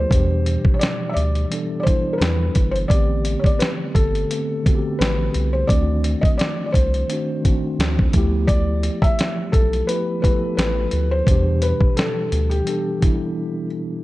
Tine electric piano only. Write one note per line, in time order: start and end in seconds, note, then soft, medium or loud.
0.00 0.12 F3 medium
0.00 0.12 A3 medium
0.00 0.12 B3 medium
0.00 0.12 E4 medium
0.00 0.12 G4 medium
0.00 0.12 A4 medium
0.09 1.11 B2 medium
0.09 1.10 E3 medium
0.09 1.10 G3 medium
0.13 1.12 D4 medium
0.13 1.12 G4 medium
1.49 1.75 E3 medium
1.49 1.76 G3 medium
1.49 1.76 B3 soft
1.49 1.77 D4 soft
1.54 1.78 A4 medium
1.83 2.59 E3 medium
1.83 2.59 G3 medium
1.83 2.60 B3 medium
1.87 2.61 D4 medium
1.87 2.61 E4 medium
2.88 3.89 D3 medium
2.88 3.89 A3 medium
2.88 3.90 B3 medium
2.92 3.91 C4 medium
2.92 3.91 G4 medium
4.28 4.54 D3 medium
4.28 4.55 A3 medium
4.28 4.56 B3 medium
4.32 4.57 C4 medium
4.32 4.57 A4 medium
4.63 5.38 D3 medium
4.63 5.39 A3 medium
4.63 5.39 B3 medium
4.67 5.40 C4 medium
4.67 4.73 F#4 medium
4.75 5.44 G4 medium
5.68 6.68 D#3 medium
5.68 6.69 A3 medium
5.68 6.69 C4 medium
5.72 6.70 D4 medium
5.72 6.71 F#4 medium
7.07 7.34 D#3 medium
7.07 7.34 A3 medium
7.07 7.35 C4 soft
7.11 7.36 D4 medium
7.11 7.36 F#4 medium
7.41 8.12 D#3 medium
7.41 8.12 A3 medium
7.41 8.13 C4 medium
7.45 8.14 D4 medium
7.45 8.15 F#4 medium
8.12 9.25 F3 medium
8.12 9.25 A3 medium
8.12 9.26 B3 medium
8.16 9.27 E4 medium
8.16 9.27 G4 medium
9.86 10.12 F3 medium
9.86 10.13 A3 medium
9.86 10.13 B3 medium
9.90 10.14 E4 medium
9.90 10.15 G4 medium
10.20 10.96 F3 medium
10.20 10.96 A3 medium
10.20 10.97 B3 medium
10.24 10.98 E4 medium
10.24 10.31 G4 medium
10.32 11.02 A4 medium
11.26 12.27 B2 medium
11.26 12.26 E3 medium
11.26 12.27 G3 medium
11.30 12.28 D4 medium
11.30 12.29 G4 medium
12.64 12.91 E3 medium
12.64 12.91 G3 medium
12.64 12.92 B3 soft
12.68 12.93 D4 medium
12.68 12.93 A4 medium
12.98 13.75 E3 medium
12.98 13.75 G3 medium
12.98 13.76 B3 medium
13.03 13.77 D4 medium
13.03 13.77 E4 medium